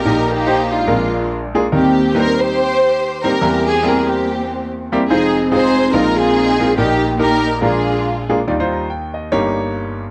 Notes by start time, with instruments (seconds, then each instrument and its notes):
Already playing: string section D#4 G4 A#4
0.05 grand piano A#1 A#2 D#4 G4 A#4
0.29 string section A#3 D#4 G4
0.47 grand piano D#4 G4 C5
0.73 string section G#3 D4 F4
0.87 grand piano A#1 A#2 G#3 A#3 C4 F4 A#4
0.93 grand piano D4
1.55 grand piano G#3 A#3 D4 F4 G#4
1.72 grand piano D#2 D#3 G3 A#3 C4 D#4 A#4, string section A#3 C4 G4
2.14 grand piano G3 A#3 C4 D#4 B4, string section A#4
2.20 grand piano C5
2.40 string section G4 C5
3.24 grand piano G3 A#3 C4 D#4 C5, string section G4 A#4
3.41 grand piano E2 E3 G3 A#3 C4 E4 A#4
3.65 string section C4 G#4
3.83 grand piano G3 A#3 C4 E4 G#4
3.88 grand piano A#4
4.07 string section A#3 C4 G4
4.92 grand piano G3 A#3 C4 E4 G4
5.08 grand piano F1 F2 G#3 C4 D#4 F4 C5, string section C4 D#4 G#4
5.52 grand piano G#3 C4 D#4 F4 G#4, string section D#4 G#4 C5
5.93 grand piano A#1 A#2 G#3 C4 D#4 F4 A#4, string section D#4 F4 A#4
6.18 string section C4 D#4 G#4
6.60 grand piano G#3 C4 D#4 F4 A#4
6.77 grand piano A#1 A#2 D#4 G4 A#4, string section A#3 D#4 G4
7.19 grand piano D#4 G4 A#4, string section D#4 G4 A#4
7.61 grand piano A#1 A#2 G#3 A#3 D4 F4 A#4, string section D4 F4 G#4
8.29 grand piano G#3 A#3 D4 F4 G#4
8.47 grand piano D#2 D#3 G3 D#4 F4 D5
8.60 grand piano G3 D#4 F4 C5
8.73 grand piano A#5
8.90 grand piano G5
9.14 grand piano D#5
9.32 grand piano G1 G2 A#3 D#4 G4 C#5